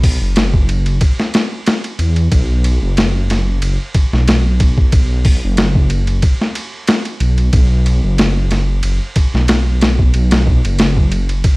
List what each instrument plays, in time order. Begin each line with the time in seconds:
Already playing: detuned saw bass B1
0.04 kick, open hi-hat
0.21 detuned saw bass F#1
0.36 snare, ride
0.54 kick
0.69 ride
0.86 ride
1.01 kick, ride
1.20 snare
1.34 snare, ride
1.66 snare, ride
1.84 ride
1.99 detuned saw bass E2, ride
2.16 ride
2.32 detuned saw bass B1, kick, ride
2.64 ride
2.83 detuned saw bass F#1
2.97 snare, ride
3.30 snare, ride
3.62 detuned saw bass F#1, ride
3.95 kick, ride
4.13 detuned saw bass B1, snare
4.28 snare, ride
4.60 kick, ride
4.78 kick
4.92 detuned saw bass B1, kick, ride
5.25 kick, open hi-hat
5.44 detuned saw bass F#1
5.57 snare, ride
5.75 kick
5.90 ride
6.07 ride
6.22 kick, ride
6.41 snare
6.55 ride
6.87 snare, ride
7.05 ride
7.20 detuned saw bass B1, ride
7.38 ride
7.53 detuned saw bass B1, kick, ride
7.86 ride
8.04 detuned saw bass F#1
8.18 snare, ride
8.51 snare, ride
8.83 detuned saw bass F#1, ride
9.16 kick, ride
9.34 detuned saw bass B1, snare
9.48 snare, ride
9.81 snare, ride
9.99 kick
10.14 detuned saw bass B1, ride
10.31 snare, ride
10.47 kick
10.65 detuned saw bass F#1, ride
10.79 snare, ride
10.97 kick
11.12 ride
11.29 ride
11.44 kick, ride